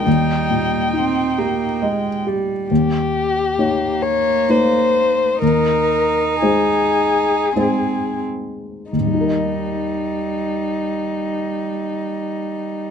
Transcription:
0.04 grand piano D#2, cello G3, viola D#4, violin G5
0.50 grand piano A#2
0.93 cello C4, grand piano D#4
1.38 cello A#3, grand piano G4
1.82 cello G#3, grand piano D#5
2.27 cello G3, grand piano G4
2.70 grand piano D#2, violin G4
3.58 grand piano A#3 D#4 C#5, cello A#3
4.02 violin C#5
4.49 grand piano A#3 D#4 C#5, violin C5
5.42 grand piano D#2, cello D#4, violin A#4
6.41 grand piano G#3 D#4 C5, violin G#4
7.56 grand piano G#3 D#4 C5, cello C4
8.92 grand piano D#2, cello G3, violin D#4
9.00 grand piano D#3
9.06 grand piano G3
9.14 grand piano D#4
9.21 grand piano A#4
9.28 grand piano D#5

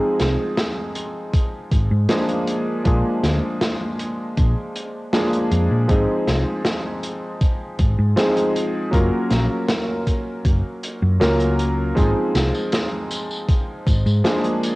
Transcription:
Already playing: electric grand piano F3 G#3 C4 D#4 G#4
0.19 fingered electric bass C2, snare, closed hi-hat
0.57 snare, closed hi-hat
0.95 closed hi-hat
1.34 kick, closed hi-hat
1.72 fingered electric bass G#1, kick, closed hi-hat
1.91 fingered electric bass G#2
2.09 electric grand piano F3 G#3 A#3 D4 G#4, snare, closed hi-hat
2.29 closed hi-hat
2.47 closed hi-hat
2.84 fingered electric bass A#1, electric grand piano F3 G#3 A#3 D4 G#4, kick, closed hi-hat
3.23 fingered electric bass D2, snare, closed hi-hat
3.61 snare, closed hi-hat
3.99 closed hi-hat
4.37 fingered electric bass A#1, kick, closed hi-hat
4.76 closed hi-hat
5.13 electric grand piano F3 G#3 A#3 D4 G#4, snare, closed hi-hat
5.33 closed hi-hat
5.51 fingered electric bass F2, closed hi-hat
5.71 fingered electric bass A#2
5.88 fingered electric bass G#1, electric grand piano F3 G#3 C4 D#4 G#4, kick, closed hi-hat
6.27 fingered electric bass C2, snare, closed hi-hat
6.65 snare, closed hi-hat
7.03 closed hi-hat
7.41 kick, closed hi-hat
7.79 fingered electric bass G#1, kick, closed hi-hat
7.99 fingered electric bass G#2
8.16 electric grand piano F3 G#3 C4 D#4 G#4, snare, closed hi-hat
8.37 closed hi-hat
8.56 closed hi-hat
8.91 fingered electric bass F#1, electric grand piano F#3 A#3 C#4 F4 A#4, kick, closed hi-hat
9.31 fingered electric bass A#1, snare, closed hi-hat
9.69 snare, closed hi-hat
10.07 kick, closed hi-hat
10.45 fingered electric bass F#1, kick, closed hi-hat
10.83 closed hi-hat
11.02 fingered electric bass F#2
11.20 fingered electric bass C#2, electric grand piano F#3 A#3 C#4 F4 A#4, snare, closed hi-hat
11.40 closed hi-hat
11.59 closed hi-hat
11.95 fingered electric bass G#1, electric grand piano F3 G#3 C4 D#4 G#4, kick, closed hi-hat, tambourine
12.35 fingered electric bass C2, snare, closed hi-hat, tambourine
12.55 tambourine
12.72 snare, closed hi-hat, tambourine
13.11 closed hi-hat, tambourine
13.31 tambourine
13.49 kick, closed hi-hat, tambourine
13.87 fingered electric bass G#1, kick, closed hi-hat, tambourine
14.06 fingered electric bass G#2, tambourine
14.24 electric grand piano F3 G#3 A#3 D4 G#4, snare, closed hi-hat, tambourine
14.44 closed hi-hat
14.63 closed hi-hat, tambourine

